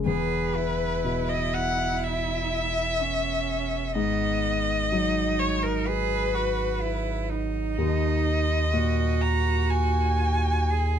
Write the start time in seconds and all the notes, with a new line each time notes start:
0.06 E1 E2 G#4 B4
0.56 E4
1.04 B2
1.29 D#5
1.54 F#5
2.04 E5
3.00 C#4
3.95 G#1 G#2 B3 D#5
4.92 F#3 D#4
5.39 C#5
5.63 A#4
5.86 G#4 B4
6.35 F#4
6.82 E4
7.29 D#4
7.77 D#2 D#5
8.74 A#2 F#4
9.22 A#5
9.71 G#5
10.70 G#4